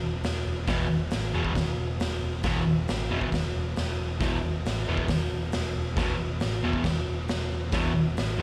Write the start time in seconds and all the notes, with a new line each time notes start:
0.02 E1
0.23 E1, snare, open hi-hat
0.46 E1
0.67 E1 E2 B2 E3, kick, snare, open hi-hat
0.90 E1
1.10 A1, snare, open hi-hat
1.33 E1 E2 B2 E3
1.45 kick
1.55 E1, kick, snare, open hi-hat
1.78 E1
2.00 E1, snare, open hi-hat
2.22 E1
2.43 E1 E2 B2 E3, kick, snare, open hi-hat
2.67 E1
2.88 A1, snare, open hi-hat
3.10 E1 E2 B2 E3
3.21 kick
3.32 E1, kick, snare, open hi-hat
3.55 E1
3.76 E1, snare, open hi-hat
4.00 E1
4.20 E1 E2 B2 E3, kick, snare, open hi-hat
4.44 E1
4.65 A1, snare, open hi-hat
4.87 E1 E2 B2 E3
4.97 kick
5.08 E1, kick, snare, open hi-hat
5.32 E1
5.52 E1, snare, open hi-hat
5.76 E1
5.96 E1 E2 B2 E3, kick, snare, open hi-hat
6.20 E1
6.40 A1, snare, open hi-hat
6.63 E1 E2 B2 E3
6.73 kick
6.84 E1, kick, snare, open hi-hat
7.08 E1
7.28 E1, snare, open hi-hat
7.51 E1
7.72 E1 E2 B2 E3, kick, snare, open hi-hat
7.94 E1
8.17 A1, snare, open hi-hat
8.39 E1 E2